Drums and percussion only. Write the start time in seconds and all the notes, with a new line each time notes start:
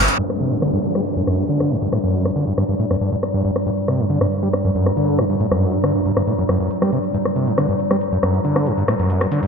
0.08 closed hi-hat, tambourine
0.19 closed hi-hat
0.30 cross-stick
0.52 closed hi-hat
0.62 cross-stick, closed hi-hat
0.73 closed hi-hat
0.84 closed hi-hat
0.95 cross-stick, closed hi-hat
1.06 closed hi-hat
1.17 closed hi-hat
1.27 cross-stick, closed hi-hat
1.39 closed hi-hat
1.49 closed hi-hat
1.60 cross-stick, closed hi-hat
1.71 closed hi-hat
1.82 closed hi-hat
1.93 cross-stick, closed hi-hat
2.04 closed hi-hat
2.14 closed hi-hat
2.25 cross-stick, closed hi-hat
2.36 closed hi-hat
2.47 closed hi-hat
2.58 cross-stick, closed hi-hat
2.69 closed hi-hat
2.79 closed hi-hat
2.91 cross-stick, closed hi-hat
3.01 closed hi-hat
3.12 closed hi-hat
3.23 cross-stick, closed hi-hat
3.34 closed hi-hat
3.45 closed hi-hat
3.56 cross-stick, closed hi-hat
3.66 closed hi-hat
3.78 closed hi-hat
3.88 cross-stick, closed hi-hat
3.99 closed hi-hat
4.10 closed hi-hat
4.21 cross-stick, closed hi-hat
4.32 closed hi-hat
4.43 closed hi-hat
4.53 cross-stick, closed hi-hat
4.65 closed hi-hat
4.75 closed hi-hat
4.86 cross-stick, closed hi-hat
4.97 closed hi-hat
5.08 closed hi-hat
5.19 cross-stick, closed hi-hat
5.30 closed hi-hat
5.40 closed hi-hat
5.52 cross-stick, closed hi-hat
5.62 closed hi-hat
5.73 closed hi-hat
5.84 cross-stick, closed hi-hat
5.95 closed hi-hat
6.06 closed hi-hat
6.17 cross-stick, closed hi-hat
6.27 closed hi-hat
6.38 closed hi-hat
6.49 cross-stick, closed hi-hat
6.60 closed hi-hat
6.71 closed hi-hat
6.82 cross-stick, closed hi-hat
6.93 closed hi-hat
7.04 closed hi-hat
7.14 closed hi-hat
7.25 cross-stick, closed hi-hat
7.36 closed hi-hat
7.47 closed hi-hat
7.58 cross-stick, closed hi-hat
7.69 closed hi-hat
7.80 closed hi-hat
7.91 cross-stick, closed hi-hat
8.01 closed hi-hat
8.12 closed hi-hat
8.23 cross-stick, closed hi-hat
8.34 closed hi-hat
8.45 closed hi-hat
8.56 cross-stick, closed hi-hat
8.66 closed hi-hat
8.78 closed hi-hat
8.88 cross-stick, closed hi-hat
8.99 closed hi-hat
9.10 closed hi-hat
9.21 cross-stick, closed hi-hat
9.32 closed hi-hat
9.43 closed hi-hat